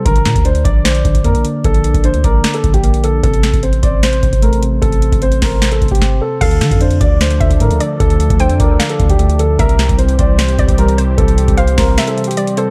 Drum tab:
CC |------------------------------------------------|------------------------------------------------|------------------------------------------------|------------------------------------------------|
HH |x--x--x--x--x--x--x-----x--x--x--x--x--x--x-----|x--x--x--x--x--x--x-----x--x--x--x--x--x--x-----|x--x--x--x--x--x--x-----x--x--x--x--x--x--x-----|x--x--x--x--x--x--o-----x--x--x-x-x-------------|
SD |------o-----------------o-----------------------|------------------------o-----------------------|------o-----------------o-----------------------|------------------o-----o-----------o-----------|
BD |o--------o--------o-----------o--o--------------|o--------o--------o-----------o--o--------------|o--------o--------o-----------o--o--------------|o--------o--------o-----------o--o--o-----------|

CC |x-----------------------------------------------|------------------------------------------------|------------------------------------------------|------------------------------------------------|
HH |x--x--x--x--x--x--x-----x--x--x--x--x--x--x-----|x--x--x--x--x--x--x-----x--x--x--x--x--x--x-----|x--x--x--x--x--x--x-----x--x--x--x--x--x--x-----|x--x--x--x--x--x--o-----x--x--x-x-x-x--x--x-----|
SD |------o-----------------o-----------------------|------------------------o-----------------------|------o-----------------o-----------------------|------------------o-----o-----------------------|
BD |o--------o--------o-----------o--o--------------|o--------o--------o-----------o--o--------------|o--------o--------o-----------o--o--------------|o--------o--------o-----------------------------|